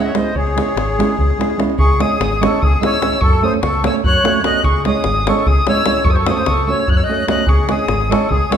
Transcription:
Already playing: nylon-string guitar G#3 C#4 E4 G#4
0.03 accordion C#5 D#5, violin E5, davul high
0.15 nylon-string guitar G#3 C#4 E4 G#4, accordion C5, violin D#5, davul high
0.26 davul high
0.35 fingered electric bass C#2, accordion G#4, violin C#5, davul low
0.47 davul high
0.56 nylon-string guitar G#3 C#4 E4 G#4, davul high
0.68 davul high
0.76 fingered electric bass G#1, davul high
0.98 nylon-string guitar G#3 C#4 E4 G#4, davul high
1.10 davul high
1.18 fingered electric bass C#2, davul low
1.30 davul high
1.38 nylon-string guitar G#3 C#4 E4 G#4, davul high
1.50 davul high
1.58 nylon-string guitar G#3 C#4 E4 G#4, davul high
1.70 davul high
1.78 fingered electric bass C#2, accordion G#4, violin C#6, davul low
1.99 nylon-string guitar G#3 C#4 E4 G#4 C#5, accordion G#4, violin D#6, davul high
2.12 davul high
2.20 fingered electric bass G#1, davul high
2.32 davul high
2.41 nylon-string guitar G#3 C#4 E4 G#4 C#5, violin C#6, davul high
2.45 accordion A4
2.62 fingered electric bass C#2, accordion G#4, violin D#6, davul low
2.80 nylon-string guitar G#3 C#4 E4 G#4 C#5, violin E6, davul high
2.85 accordion C#5
2.94 davul high
3.01 nylon-string guitar G#3 C#4 E4 G#4 C#5, davul high
3.13 davul high
3.21 fingered electric bass F#2, accordion A4, violin C#6, davul low
3.42 nylon-string guitar A3 C#4 F#4 A4 C#5, accordion C5, violin D#6
3.54 davul high
3.63 fingered electric bass C#2, accordion A4, violin C#6, davul high
3.74 davul high
3.83 nylon-string guitar A3 C#4 F#4 A4 C#5, violin E6, davul high
3.88 accordion C#5
4.04 fingered electric bass F#2, accordion C#5, violin F#6, davul low
4.23 nylon-string guitar A3 C#4 F#4 A4 C#5, davul high
4.34 davul high
4.43 nylon-string guitar A3 C#4 F#4 A4 C#5, accordion D#5, violin F#6, davul high
4.54 davul high
4.63 fingered electric bass C#2, accordion G#4, violin C#6, davul low
4.85 nylon-string guitar G#3 C#4 E4 G#4 C#5, accordion G#4, violin D#6, davul high
4.96 davul high
5.04 fingered electric bass G#1, davul high
5.16 davul high
5.27 nylon-string guitar G#3 C#4 E4 G#4 C#5, accordion A4, violin C#6, davul high
5.46 fingered electric bass C#2, accordion G#4, violin D#6, davul low
5.67 nylon-string guitar G#3 C#4 E4 G#4 C#5, accordion C#5, violin E6, davul high
5.77 davul high
5.86 nylon-string guitar G#3 C#4 E4 G#4 C#5, davul high
5.96 davul high
6.04 fingered electric bass F#2, accordion A4, violin C#6, davul low
6.10 accordion C5, violin D#6
6.15 accordion A4, violin C#6, davul high
6.26 nylon-string guitar A3 C#4 F#4 A4 C#5, accordion C5, violin C#6 D#6, davul high
6.33 accordion A4, violin D#6, davul high
6.39 accordion C5
6.45 fingered electric bass C#2, accordion A4, violin C#6, davul high
6.58 davul high
6.67 nylon-string guitar A3 C#4 F#4 A4 C#5, violin E6
6.71 accordion C#5
6.79 davul high
6.88 fingered electric bass F#2, accordion C#5, violin F#6, davul low
6.96 accordion C#5, violin E6, davul high
7.03 accordion D#5, violin F#6
7.08 nylon-string guitar A3 C#4 F#4 A4 C#5
7.27 nylon-string guitar A3 C#4 F#4 A4 C#5, accordion D#5, violin F#6, davul high
7.38 davul high
7.46 fingered electric bass C#2, accordion G#4, violin C#6, davul low
7.68 nylon-string guitar G#3 C#4 E4 G#4 C#5, accordion G#4, violin D#6, davul high
7.79 davul high
7.88 fingered electric bass G#1, davul high
8.01 davul high
8.09 nylon-string guitar G#3 C#4 E4 G#4 C#5, accordion A4, violin C#6, davul high
8.29 fingered electric bass C#2, accordion G#4, violin D#6, davul low
8.49 nylon-string guitar G#3 C#4 E4 G#4 C#5, accordion C#5, violin E6, davul high

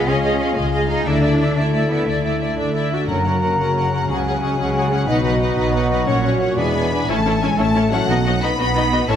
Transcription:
Already playing: harp G#3 C#4 F4 G#4 C#5 D#5, french horn section F4 G#4
0.07 double bass section C#2, harp C#3, cello section C#4, viola section G#4, violin section D#5 F5
0.22 harp G#3, viola section G#4, violin section D#5 F5
0.38 viola section G#4, violin section D#5 F5, harp D#5
0.55 double bass section C#2, cello section G#3, harp G#4, viola section G#4, violin section D#5 F5
0.72 harp F4, viola section G#4, violin section D#5 F5
0.88 harp C#4, cello section D#4, viola section G#4, violin section D#5 F5
1.05 double bass section D2, harp D3, cello section D4, french horn section E4 A4, viola section E4, violin section D5 E5
1.23 harp A3, viola section E4, violin section D5 E5
1.39 viola section E4, violin section D5 E5, harp D5
1.56 double bass section D2, cello section A3, viola section E4, harp A4, violin section D5 E5
1.73 harp E4, viola section E4, violin section D5 E5
1.90 cello section B3, harp D4, viola section E4, violin section D5 E5
2.07 double bass section D2, harp D3, cello section A3, viola section E4, violin section D5 E5
2.24 harp A3, viola section E4, violin section D5 E5
2.41 viola section E4, harp D5, violin section D5 E5
2.57 double bass section D2, viola section D4, harp A4, violin section D5 E5
2.74 harp E4, viola section E4, violin section D5 E5
2.91 harp D4, viola section F#4, violin section D5 E5
3.06 double bass section F#1, timpani F#2, cello section F#2, harp F#2, trombone section C#3 F#3, french horn section A#3 C#4, viola section C#4, clarinet F#4, violin section A#4 F#5, flute A#5
3.24 harp C#3, viola section C#4, violin section A#4 F#5
3.42 harp A#3, viola section C#4, violin section A#4 F#5
3.58 double bass section F#1, cello section F#2, viola section C#4, harp F#4, violin section A#4 F#5
3.75 viola section C#4, violin section A#4 F#5, harp C#5
3.92 viola section C#4, harp F#4, violin section A#4 F#5
4.08 double bass section C#2, timpani C#3, cello section C#3, harp C#3, french horn section G#3, viola section C#4, violin section G#4 F#5, flute G#5
4.25 viola section C#4, harp C#4, violin section G#4 F#5
4.42 harp G#3, viola section C#4, violin section G#4 F#5
4.58 double bass section C#2, cello section C#3, viola section C#4, harp F#4, violin section G#4 F#5
4.74 viola section C#4, violin section G#4 F#5, harp C#5
4.91 viola section C#4, harp F#4, violin section G#4 F#5
5.07 double bass section B1, harp B2, trombone section B2 F#3, cello section B2, french horn section B3 D#4, viola section D#4, clarinet F#4, violin section B4 F#5, flute D#5
5.23 harp F#3, viola section D#4, violin section B4 F#5
5.40 harp B3, viola section D#4, violin section B4 F#5
5.56 double bass section B1, cello section B2, viola section D#4, harp F#4, violin section B4 F#5
5.74 viola section D#4, violin section B4 F#5, harp D#5
5.90 viola section D#4, harp F#4, violin section B4 F#5
6.06 double bass section A#1, harp A#2, trombone section A#2, cello section A#2, french horn section C#4 F#4, viola section C#4, violin section C#5 F#5, flute C#5
6.23 harp C#4, viola section C#4, violin section C#5 F#5
6.40 viola section C#4, harp F#4, violin section C#5 F#5
6.57 double bass section E1, cello section E2 B3, trombone section B2 G#3, harp E3, french horn section B3 D4 E4, viola section D4, clarinet G#4, violin section B4 G#5 B5, flute D5
6.75 harp D4, viola section D4, violin section B4 G#5
6.91 viola section D4, harp G#4 B4, violin section B4 G#5
7.08 double bass section A1, harp A2, cello section A3, french horn section A3, viola section C#4 E4, violin section A4 C#5 A5
7.17 harp E3
7.26 viola section C#4 E4, harp C#4, violin section A4 C#5
7.34 harp E4
7.42 cello section G#3, french horn section G#3, viola section C#4 E4, harp A4, violin section A4 C#5 G#5
7.51 harp C#5
7.58 double bass section A1, cello section A3, french horn section A3, viola section C#4 E4, violin section A4 C#5 A5, harp E5
7.67 harp A5
7.75 viola section C#4 E4, violin section A4 C#5, harp E5
7.83 harp A4
7.91 french horn section F#3, cello section F#3, harp C#4, viola section C#4 E4, violin section A4 C#5 F#5
8.00 harp E3
8.07 double bass section B1, harp B2, viola section B3 D#4, violin section F#4 D#5
8.25 harp B3, viola section B3 D#4, violin section F#4 D#5
8.33 harp D#4
8.41 cello section B3, french horn section B3, viola section B3 D#4, harp F#4, violin section F#4 D#5 B5
8.50 harp B4
8.58 double bass section B1, cello section B3, french horn section B3, viola section B3 D#4, violin section F#4 D#5 B5, harp D#5
8.67 harp F#5
8.75 viola section B3 D#4, violin section F#4 D#5, harp D#5
8.82 harp F#4
8.91 harp B3, viola section B3 D#4, violin section F#4 D#5
9.00 harp F#3
9.07 double bass section A1, harp A2, cello section A3, french horn section A3, viola section C#4 E4, violin section A4 C#5 A5

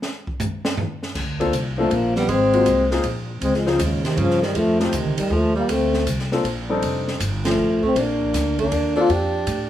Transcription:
0.02 snare
0.27 kick
0.40 floor tom, hi-hat pedal
0.65 snare
0.77 floor tom
1.03 snare
1.15 upright bass D2, kick, snare, crash
1.39 grand piano A#3 C4 D4 F4 A4, kick, ride
1.53 upright bass C2, hi-hat pedal, ride
1.78 tenor saxophone F3, trombone A3, grand piano A#3 C4 D4 F4 A4
1.90 upright bass A#1, tenor saxophone F3, trombone A#3, kick, ride
2.16 tenor saxophone G3, trombone B3, snare
2.28 upright bass G#1, tenor saxophone G#3, trombone C4, kick, ride
2.53 grand piano A#3 C4 D#4 F4 F#4, ride
2.66 upright bass C2, kick, hi-hat pedal, ride
2.91 grand piano A#3 C4 D#4 F4 G#4, snare
3.03 upright bass A#1, kick, ride
3.41 upright bass C#2, tenor saxophone G#3, trombone C4, kick, ride
3.54 tenor saxophone F3, trombone G#3, snare
3.66 tenor saxophone C#3, trombone F3, grand piano C4 C#4 D#4 F4 G#4, snare
3.79 upright bass D#2, tenor saxophone G#2, trombone C#3, kick, hi-hat pedal, ride
4.04 tenor saxophone C3, trombone D#3, snare, ride
4.17 upright bass G2, tenor saxophone C#3, trombone F3, kick, ride
4.30 snare
4.42 tenor saxophone D#3, trombone G3, snare
4.55 upright bass F2, tenor saxophone F3, trombone A3, kick, ride
4.80 tenor saxophone A2, trombone C3, grand piano A3 C4 D#4 F4 G4, snare
4.93 upright bass D2, tenor saxophone C3, trombone D#3, kick, hi-hat pedal, ride
5.05 upright bass C2
5.17 upright bass A1, tenor saxophone D#3, trombone G3, ride
5.30 upright bass D#2, tenor saxophone F3, trombone A3, kick
5.55 tenor saxophone G3, trombone A#3
5.68 upright bass D2, tenor saxophone A3, trombone C4, kick, ride
5.94 snare
6.06 upright bass C2, kick, hi-hat pedal, ride
6.19 snare
6.32 grand piano A#3 C4 D4 F4 A4, snare
6.44 upright bass A#1, kick, ride
6.69 grand piano G3 C4 D4 D#4 A4
6.82 upright bass F1, kick, ride
7.08 snare
7.20 upright bass G1, kick, hi-hat pedal, ride
7.45 tenor saxophone F3, trombone A3, snare, ride
7.57 upright bass A1
7.83 tenor saxophone A3, trombone C4, kick
7.96 upright bass A#1, tenor saxophone A#3, trombone D4, kick, ride
8.21 kick
8.34 upright bass D2, snare, hi-hat pedal, ride
8.59 tenor saxophone A#3, trombone D4, kick, ride
8.71 upright bass D#2, kick, ride
8.95 grand piano A#3 C4 D4 F4 A4, tenor saxophone D4, trombone F4
9.09 upright bass F2, tenor saxophone D4, trombone G4, kick, ride
9.47 upright bass A2, hi-hat pedal, ride

